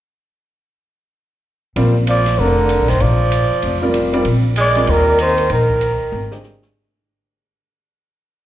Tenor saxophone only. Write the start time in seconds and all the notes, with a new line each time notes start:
2.08 F3
2.38 D3
2.89 D#3
3.01 F3
4.57 G#3
4.88 D#3
5.19 D#3
5.50 D#3